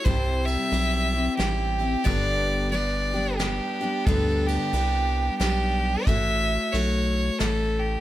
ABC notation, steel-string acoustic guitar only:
X:1
M:3/4
L:1/8
Q:"Swing" 1/4=90
K:G
V:1 name="Steel-string acoustic guitar"
[C,G,CEG]2 [G,CEG] [CEG] [G,CEG] [CEG] | [G,,D,G,B,DG]2 [G,B,DG] [G,B,DG] [G,B,DG] [G,B,DG] | [G,,D,G,B,DG]2 [G,B,DG]2 [G,B,DG]2 | [A,EF^c]2 [A,EFc]2 [A,Ec]2 |]